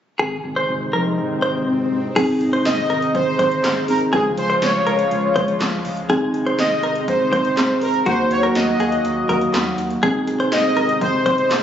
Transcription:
0.19 G#1 C3 D#3 G#3 D#4 G#4, swell
0.44 G#1
0.56 C5
0.69 G#1
0.93 A#1 A#4
1.18 G#1
1.42 G#1 C5
1.67 G#1
1.92 G#1
2.16 G#1 C3 D#3 G#3 C4 D#4 G#4, kick, closed hi-hat, crash
2.41 G#1, closed hi-hat
2.53 C5, closed hi-hat
2.65 G#1 D#5, snare, closed hi-hat
2.90 G#1 A#4, closed hi-hat
3.02 closed hi-hat
3.15 G#1 C5, kick, closed hi-hat
3.39 G#1 C5, kick, closed hi-hat
3.52 closed hi-hat
3.64 G#1, snare, clap, closed hi-hat
3.88 G#1 C4 D#4 G#4 A#4, open hi-hat
4.01 closed hi-hat
4.13 C#2 C#3 F3 C#4 F4 G#4, kick, closed hi-hat
4.37 C#2 C5, closed hi-hat
4.50 C5, closed hi-hat
4.62 C#2 C#5, snare, closed hi-hat
4.87 C#2 A#4, closed hi-hat
4.99 closed hi-hat
5.11 C#2, closed hi-hat
5.36 C#2 C5, kick, closed hi-hat
5.48 closed hi-hat
5.60 C#2, snare, clap, closed hi-hat
5.85 C#2, open hi-hat
5.97 closed hi-hat
6.10 G#1 C3 D#3 C4 D#4 G#4, kick, closed hi-hat
6.34 G#1, closed hi-hat
6.46 C5, closed hi-hat
6.59 G#1 D#5, snare, closed hi-hat
6.83 G#1 A#4, closed hi-hat
6.96 closed hi-hat
7.08 G#1 C5, kick, closed hi-hat
7.33 G#1 C5, kick, closed hi-hat
7.45 closed hi-hat
7.57 G#1 C4 D#4 G#4, snare, clap, closed hi-hat
7.82 G#1 A#4, open hi-hat
7.94 closed hi-hat
8.06 D#2 F#3 A#3 D#4 F#4 C5, kick, closed hi-hat
8.31 D#2 C#5, closed hi-hat
8.43 A#4, closed hi-hat
8.55 D#2 D#5, snare, closed hi-hat
8.80 D#2 G#4, closed hi-hat
8.92 closed hi-hat
9.05 D#2, closed hi-hat
9.29 D#2 A#4, kick, closed hi-hat
9.41 closed hi-hat
9.54 D#2, snare, clap, closed hi-hat
9.78 D#2, closed hi-hat
9.90 closed hi-hat
10.03 G#1 C3 G#3 C4 D#4 G#4, kick, closed hi-hat
10.27 G#1, closed hi-hat
10.40 C5, closed hi-hat
10.52 G#1 D#5, snare, closed hi-hat
10.77 G#1 A#4, closed hi-hat
10.89 closed hi-hat
11.01 G#1 C5, kick, closed hi-hat
11.26 G#1 C5, kick, closed hi-hat
11.38 closed hi-hat
11.50 G#1, snare, clap, closed hi-hat

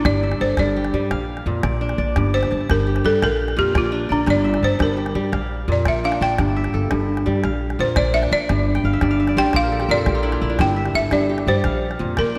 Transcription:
Already playing: A#2 D4 D5
0.05 G1 G2 D5, calabash thump, calabash click
0.23 E5
0.32 calabash click
0.40 G1 A4 C5, calabash click
0.48 calabash click
0.57 G1 G2 D5, calabash thump, calabash click
0.76 G4
0.85 calabash click
0.94 G2 G3
1.11 A#1 F5, calabash thump, calabash click
1.37 calabash click
1.46 F2 A#2
1.63 A#1 D5, calabash thump, calabash click
1.72 calabash click
1.81 D4
1.89 calabash click
1.98 A#1 D5, calabash click
2.16 G1 G2, calabash thump, calabash click
2.34 C5 E5
2.43 calabash click
2.51 G1 A5, calabash click
2.61 calabash click
2.69 G1 G2 A#4, calabash thump, calabash click
2.87 G4
2.96 calabash click
3.04 G2 G3 A4
3.22 A#1 A#4 F5, calabash thump, calabash click
3.48 calabash click
3.57 F2 A#2 G4
3.74 A#1 F4 D5, calabash thump, calabash click
3.84 calabash click
3.92 D4
4.09 A#1 D4 D5
4.26 G1 G2 D5, calabash thump, calabash click
4.44 E5, calabash click
4.54 calabash click
4.63 G1 C5 A5
4.79 G1 G2 A#4, calabash thump, calabash click
4.97 G4, calabash click
5.06 calabash click
5.15 G2 G3, calabash click
5.32 A#1 F5, calabash thump, calabash click
5.68 F2 A#2
5.72 D5
5.86 A#1 D5 E5, calabash thump, calabash click
5.95 calabash click
6.04 D4 F5
6.12 calabash click
6.21 A#1 D5 G5
6.30 calabash click
6.38 G1 G2, calabash thump, calabash click
6.56 E5
6.64 calabash click
6.73 G1 A4, calabash click
6.82 calabash click
6.91 G1 G2, calabash thump, calabash click
7.17 calabash click
7.26 G2 G3
7.44 A#1 F5, calabash thump, calabash click
7.70 calabash click
7.79 F2 A#2 C5
7.96 A#1 D5, calabash thump, calabash click
8.05 calabash click
8.14 D4 E5
8.23 calabash click
8.32 A#1 D5, calabash click
8.49 G1 G2, calabash thump, calabash click
8.75 G5, calabash click
8.84 G1 F5, calabash click
8.93 E5, calabash click
9.01 G1 G2 D5, calabash thump, calabash click
9.11 F5
9.20 E5
9.27 D5, calabash click
9.36 A1 G3 C5 G5
9.46 D5
9.53 A#1 C5 F5, calabash thump, calabash click
9.63 A#4
9.72 A4
9.80 G4, calabash click
9.89 F2 A#2 A#4 D5
9.97 A4
10.06 A#1 G4, calabash thump, calabash click
10.15 F4, calabash click
10.23 D4 E4
10.32 F4, calabash click
10.41 A#1 E4
10.50 D4
10.59 G1 G2 G5, calabash thump, calabash click
10.76 E5
10.86 calabash click
10.94 G1 A4 E5, calabash click
11.03 calabash click
11.11 G1 G2 D5, calabash thump, calabash click
11.29 G4
11.38 calabash click
11.47 G2 G3 C5
11.64 A#1 F5, calabash thump, calabash click
11.91 calabash click
11.99 F2 A#2
12.17 A#1 A#4 D5, calabash thump, calabash click
12.26 calabash click
12.35 D4

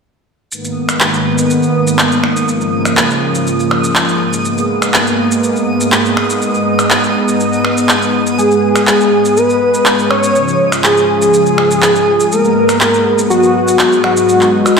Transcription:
0.52 G#2 D#3 A#3 B3 D#6, shaker
0.64 shaker
0.89 finger snap, shaker
1.00 clap, shaker
1.14 shaker
1.38 shaker
1.50 shaker
1.63 shaker
1.87 shaker
1.99 clap, shaker
2.12 shaker
2.24 finger snap
2.36 shaker
2.48 G#2 C#3 F3, shaker
2.61 shaker
2.85 finger snap, shaker
2.97 clap, shaker
3.10 shaker
3.35 shaker
3.47 shaker
3.60 shaker
3.71 finger snap
3.84 shaker
3.95 clap, shaker
4.09 shaker
4.33 shaker
4.45 G#3 A#3 B3, shaker
4.58 shaker
4.82 finger snap, shaker
4.94 clap, shaker
5.07 shaker
5.32 shaker
5.44 shaker
5.56 shaker
5.81 shaker
5.92 clap, shaker
6.05 shaker
6.17 finger snap
6.30 shaker
6.42 D#4, shaker
6.54 shaker
6.79 finger snap, shaker
6.90 clap, shaker
7.04 shaker
7.28 shaker
7.40 shaker
7.53 shaker
7.65 finger snap
7.77 shaker
7.89 clap, shaker
8.02 shaker
8.27 shaker
8.38 G#3 G#4, shaker
8.51 shaker
8.76 finger snap, shaker
8.87 clap, shaker
9.00 shaker
9.25 shaker
9.37 B4, shaker
9.50 shaker
9.74 shaker
9.86 clap, shaker
9.99 shaker
10.11 C#5, finger snap
10.23 shaker
10.35 G#2 C#3 F3, shaker
10.48 shaker
10.72 finger snap, shaker
10.84 G#4, clap, shaker
10.97 shaker
11.22 shaker
11.34 shaker
11.46 shaker
11.58 finger snap
11.71 shaker
11.82 clap, shaker
11.96 shaker
12.20 shaker
12.32 G#3 B3 A#4, shaker
12.45 shaker
12.69 finger snap, shaker
12.81 clap, shaker
12.94 shaker
13.18 shaker
13.30 F#4, shaker
13.43 shaker
13.68 shaker
13.79 clap, shaker
13.92 shaker
14.04 F#4, finger snap
14.17 shaker
14.29 G#3 D#4, shaker
14.41 clap, shaker
14.66 finger snap, shaker

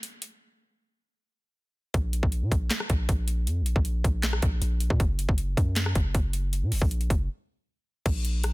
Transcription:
0.03 closed hi-hat
0.22 closed hi-hat
1.94 A#1, kick, closed hi-hat
2.13 closed hi-hat
2.23 A#1, kick
2.32 closed hi-hat
2.42 A#2
2.52 A#1, kick, closed hi-hat
2.70 snare, clap, closed hi-hat
2.80 cross-stick
2.90 A#1, kick, closed hi-hat
3.09 A#1, kick, closed hi-hat
3.28 closed hi-hat
3.47 F2, closed hi-hat
3.61 A#1
3.66 closed hi-hat
3.76 A#1, kick
3.85 closed hi-hat
4.04 A#1, kick, closed hi-hat
4.23 snare, clap, closed hi-hat
4.33 cross-stick
4.42 A#1, kick, closed hi-hat
4.62 A#1, closed hi-hat
4.80 closed hi-hat
4.90 A#2, kick
5.00 F#1, kick, closed hi-hat
5.19 closed hi-hat
5.29 F#1, kick
5.38 closed hi-hat
5.57 F#2, kick, closed hi-hat
5.76 snare, clap, closed hi-hat
5.86 cross-stick
5.95 F#1, kick, closed hi-hat
6.15 F#1, kick, closed hi-hat
6.33 closed hi-hat
6.53 closed hi-hat
6.62 A#2
6.72 F#1, open hi-hat
6.82 A#1, kick
6.91 closed hi-hat
7.01 closed hi-hat
7.10 F#1, kick, closed hi-hat
8.06 A#1, kick, closed hi-hat, crash
8.25 closed hi-hat
8.44 cross-stick, closed hi-hat

